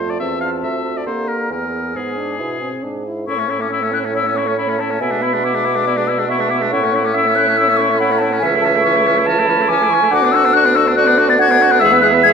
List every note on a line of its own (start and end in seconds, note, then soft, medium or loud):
0.00 0.19 F2 soft
0.00 0.22 A3 soft
0.00 1.05 F4 soft
0.00 0.12 C5 medium
0.00 1.05 A5 soft
0.10 0.19 D5 soft
0.20 0.62 E2 soft
0.20 1.08 C4 soft
0.20 0.40 E5 medium
0.41 0.51 F5 soft
0.63 1.06 D2 soft
0.63 0.99 E5 medium
0.97 1.06 D5 soft
1.06 1.50 D3 soft
1.06 1.52 A#3 soft
1.06 1.51 G4 soft
1.06 1.29 C5 soft
1.06 1.51 A#5 soft
1.28 1.51 A#4 soft
1.50 1.94 E2 soft
1.50 1.91 B3 soft
1.50 3.06 G#4 soft
1.50 1.98 A#4 soft
1.50 3.06 G#5 soft
1.95 2.39 G#2 soft
1.95 2.18 B3 soft
1.95 2.85 G#4 soft
2.17 2.40 D4 soft
2.39 2.71 B2 soft
2.39 2.60 E4 soft
2.61 2.85 C4 soft
2.83 3.27 G#2 soft
2.83 3.05 D4 soft
3.06 3.26 E4 soft
3.27 4.97 A2 medium
3.27 3.39 C#4 medium
3.27 3.41 E4 soft
3.27 3.63 C#6 medium
3.37 3.50 A3 soft
3.37 3.51 C#4 soft
3.49 3.61 C#4 soft
3.49 3.63 E4 soft
3.59 3.69 A3 soft
3.59 3.72 C#4 soft
3.59 3.71 D6 medium
3.70 3.83 C#4 soft
3.70 3.85 E4 medium
3.70 3.93 E6 medium
3.81 3.93 A3 soft
3.81 3.95 C#4 soft
3.92 4.05 C#4 soft
3.92 4.07 E4 soft
3.92 3.99 F#6 medium
4.04 4.13 A3 soft
4.04 4.15 C#4 soft
4.14 4.26 C#4 medium
4.14 4.28 E4 medium
4.14 5.02 C#5 medium
4.14 4.38 E6 medium
4.24 4.36 A3 soft
4.24 4.39 C#4 soft
4.35 4.48 C#4 medium
4.35 4.49 E4 soft
4.35 4.57 C#6 medium
4.46 4.57 A3 soft
4.46 4.58 C#4 soft
4.57 4.69 C#4 medium
4.57 4.71 E4 medium
4.57 4.81 B5 medium
4.68 4.81 A3 soft
4.68 4.82 C#4 medium
4.79 4.91 C#4 medium
4.79 4.92 E4 medium
4.79 5.02 A5 medium
4.90 5.00 A3 soft
4.90 5.01 C#4 soft
5.00 6.74 B2 medium
5.00 5.13 B3 medium
5.00 5.13 E4 medium
5.00 5.86 E5 medium
5.00 5.23 G#5 medium
5.11 5.24 G#3 soft
5.11 5.24 D4 soft
5.22 5.35 B3 medium
5.22 5.35 E4 soft
5.22 5.46 B5 medium
5.34 5.43 G#3 soft
5.34 5.44 D4 medium
5.44 5.55 B3 medium
5.44 5.57 E4 medium
5.44 6.09 D6 medium
5.54 5.67 G#3 soft
5.54 5.67 D4 medium
5.65 5.77 B3 soft
5.65 5.77 E4 medium
5.76 5.86 G#3 soft
5.76 5.87 D4 medium
5.86 5.99 B3 medium
5.86 5.99 E4 medium
5.86 6.31 D5 medium
5.97 6.09 G#3 medium
5.97 6.11 D4 medium
6.07 6.20 B3 medium
6.07 6.21 E4 medium
6.07 6.29 E6 medium
6.19 6.28 G#3 soft
6.19 6.30 D4 soft
6.29 6.40 B3 medium
6.29 6.42 E4 medium
6.29 6.74 E5 medium
6.29 6.50 C#6 medium
6.39 6.51 G#3 medium
6.39 6.52 D4 medium
6.50 6.62 B3 medium
6.50 6.64 E4 medium
6.50 6.56 D6 medium
6.60 6.70 G#3 medium
6.60 6.73 D4 medium
6.70 8.45 A2 medium
6.70 6.83 C#4 medium
6.70 6.86 E4 medium
6.70 7.13 F#5 medium
6.70 7.07 C#6 medium
6.82 6.95 A3 medium
6.82 6.97 C#4 medium
6.93 7.05 C#4 medium
6.93 7.07 E4 medium
7.03 7.14 A3 medium
7.03 7.16 C#4 medium
7.03 7.16 D6 medium
7.14 7.27 C#4 medium
7.14 7.29 E4 medium
7.14 7.98 E5 medium
7.14 7.37 E6 medium
7.25 7.38 A3 medium
7.25 7.39 C#4 medium
7.35 7.49 C#4 medium
7.35 7.50 E4 medium
7.35 7.58 F#6 medium
7.47 7.57 A3 medium
7.47 7.59 C#4 medium
7.57 7.70 C#4 medium
7.57 7.71 E4 medium
7.57 7.78 E6 medium
7.69 7.81 A3 medium
7.69 7.82 C#4 medium
7.77 7.91 C#4 medium
7.77 7.93 E4 medium
7.77 8.00 C#6 medium
7.89 7.99 A3 medium
7.89 8.01 C#4 medium
7.98 8.12 C#4 medium
7.98 8.13 E4 medium
7.98 8.41 F#5 medium
7.98 8.20 B5 loud
8.11 8.23 A3 medium
8.11 8.23 C#4 medium
8.18 8.33 C#4 medium
8.18 8.34 E4 medium
8.18 8.39 A5 medium
8.31 8.41 A3 medium
8.31 8.43 C#4 medium
8.39 9.85 C#2 medium
8.39 8.54 E3 medium
8.39 9.28 E5 medium
8.39 8.45 G#5 loud
8.44 8.57 C#4 medium
8.53 8.64 A3 medium
8.53 8.67 E4 medium
8.61 8.75 E3 medium
8.61 8.77 C#4 medium
8.61 8.67 A5 loud
8.73 8.84 A3 medium
8.73 8.85 E4 medium
8.82 8.97 E3 medium
8.82 8.98 C#4 medium
8.82 9.18 C#6 loud
8.95 9.07 A3 medium
8.95 9.09 E4 medium
9.05 9.18 E3 medium
9.05 9.19 C#4 medium
9.16 9.26 A3 medium
9.16 9.28 E4 medium
9.26 9.39 E3 medium
9.26 9.41 C#4 medium
9.26 9.71 A5 medium
9.37 9.49 A3 medium
9.37 9.51 E4 medium
9.46 9.60 E3 medium
9.46 9.63 C#4 medium
9.46 9.70 B5 loud
9.58 9.68 A3 medium
9.58 9.71 E4 medium
9.68 9.81 E3 medium
9.68 9.85 C#4 medium
9.68 10.13 G#5 loud
9.68 9.92 D6 loud
9.79 9.91 A3 medium
9.79 9.95 E4 medium
9.89 10.02 E3 medium
9.89 10.09 C#6 loud
9.94 10.06 C#4 medium
10.01 10.11 A3 medium
10.01 10.14 E4 medium
10.10 11.78 D2 medium
10.10 10.24 D4 medium
10.10 10.69 F#5 loud
10.10 10.33 D6 loud
10.15 10.27 F#4 medium
10.22 10.34 B3 medium
10.22 10.37 D4 medium
10.31 10.45 D4 medium
10.31 10.47 F#4 medium
10.31 10.55 E6 loud
10.44 10.53 B3 medium
10.44 10.55 D4 medium
10.53 10.67 D4 medium
10.53 10.67 F#4 medium
10.53 10.77 F#6 loud
10.65 10.77 B3 medium
10.65 10.78 D4 medium
10.75 10.87 D4 medium
10.75 10.90 F#4 medium
10.75 10.94 E6 loud
10.86 10.96 B3 medium
10.86 10.97 D4 medium
10.95 11.08 D4 medium
10.95 11.09 F#4 medium
10.95 11.37 D5 medium
10.95 11.27 F#6 loud
11.06 11.19 B3 medium
11.06 11.20 D4 medium
11.18 11.30 D4 medium
11.18 11.31 F#4 medium
11.29 11.38 B3 medium
11.29 11.40 D4 medium
11.29 11.34 A6 loud
11.39 11.51 D4 medium
11.39 11.53 F#4 medium
11.39 11.80 F#5 loud
11.39 11.72 G#6 loud
11.49 11.61 B3 medium
11.49 11.63 D4 medium
11.60 11.72 D4 medium
11.60 11.74 F#4 medium
11.71 11.80 B3 medium
11.71 11.82 D4 medium
11.71 11.81 F#6 loud
11.80 12.33 E2 loud
11.80 11.93 G#3 medium
11.80 11.95 G#4 medium
11.80 12.33 E5 loud
11.80 12.01 E6 loud
11.92 12.04 B3 medium
11.92 12.05 B4 medium
12.01 12.14 G#3 medium
12.01 12.16 G#4 medium
12.01 12.07 F#6 loud
12.13 12.24 B3 medium
12.13 12.24 B4 medium
12.23 12.33 G#3 medium
12.23 12.33 G#4 medium
12.23 12.29 G#6 loud